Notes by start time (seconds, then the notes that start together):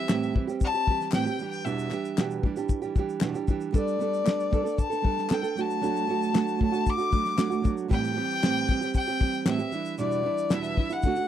Already playing: E5
0.08 A2 E3 G3 C4 G4, snare, clap, shaker
0.23 shaker
0.33 E3 G3 C4 G4, kick
0.47 G3 C4 G4, shaker
0.61 A5, kick, shaker
0.74 G3 C4 G4, shaker
0.87 E3 G3 C4 G4, kick
1.01 snare, shaker
1.12 A2 E3 G3 C4 G4 G5, snare, clap, shaker
1.26 G3 C4 G4, shaker
1.39 E3 G3 D4 G4, shaker
1.51 G5, shaker
1.65 E2 B2 E3 G3 D4 G4 E5, shaker
1.79 shaker
1.91 E3 G3 D4 G4, clap, shaker
2.05 shaker
2.17 E2 B2 E3 G3 D4 G4, snare, clap, shaker
2.31 shaker
2.43 E3 G3 D4 G4, kick
2.56 E3 G3 D4 G4, shaker
2.69 kick, shaker
2.82 E3 G3 D4 G4, shaker
2.96 E3 G3 D4 G4, kick, shaker
3.09 shaker
3.21 E2 B2 E3 G3 D4 G4, snare, clap, shaker
3.35 E3 G3 D4 G4, shaker
3.47 E3 G3 D4 G4, kick, shaker
3.61 shaker
3.72 G3 B3 D4 A4, kick, shaker
3.77 D5
3.88 shaker
3.99 G3 B3 D4 A4, shaker
4.14 shaker
4.24 G3 B3 D4 A4, snare, clap, shaker
4.40 shaker
4.51 G3 B3 D4 A4, kick, shaker
4.63 B3 D4 A4, shaker
4.78 A5, kick, shaker
4.90 B3 D4 A4, shaker
5.02 G3 B3 D4 A4, kick
5.18 snare, shaker
5.29 G3 B3 D4 A4 G5, snare, clap, shaker
5.43 B3 D4 A4, shaker
5.55 F#3 A3 D4 F#4, shaker
5.60 A5
5.70 shaker
5.81 F#3 A3 D4 F#4, shaker
5.96 shaker
6.07 F#3 A3 D4 F#4
6.22 shaker
6.33 F#3 A3 D4 F#4, snare, clap, shaker
6.48 shaker
6.59 F#3 A3 D4 F#4, kick
6.64 A5
6.71 A3 D4 F#4, shaker
6.86 D6, kick, shaker
6.97 A3 D4 F#4, shaker
7.11 F#3 A3 D4 F#4, kick, shaker
7.26 snare, shaker
7.36 F#3 A3 D4 F#4, snare, clap, shaker
7.50 A3 D4 F#4, shaker
7.62 F#3 A3 D4 F#4, kick, shaker
7.78 shaker
7.88 A2 E3 G3 C4 G4 G5, kick, shaker
8.04 shaker
8.14 E3 G3 C4 G4
8.31 shaker
8.42 A2 E3 G3 C4 G4, snare, clap, shaker
8.56 shaker
8.68 E3 G3 C4 G4, kick, shaker
8.81 C4 G4, shaker
8.85 G3
8.94 G5, kick, shaker
9.07 G3 C4 G4, shaker
9.19 E3 G3 C4 G4, kick, shaker
9.34 shaker
9.46 A2 E3 G3 C4 G4, snare, clap, shaker
9.50 E5
9.58 G3 C4 G4, shaker
9.71 E3 G3 D4 E4, shaker
9.85 shaker
9.98 E2 B2 E3 G3 D4 E4 D5, shaker
10.11 shaker
10.23 E3 G3 D4 E4
10.38 shaker
10.50 E2 B2 E3 G3 D4 E4 E5, snare, clap, shaker
10.63 shaker
10.76 E3 G3 D4 E4, kick
10.90 E3 G3 D4 E4 F#5, shaker
11.02 D3 A3 D4, kick, shaker
11.07 F#4
11.16 D4 F#4, shaker
11.21 A3